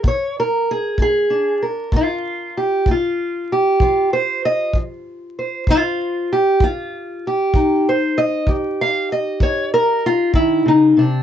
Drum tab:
BD |o--o--o--o--|o--o--o--o--|o--o--o--o--|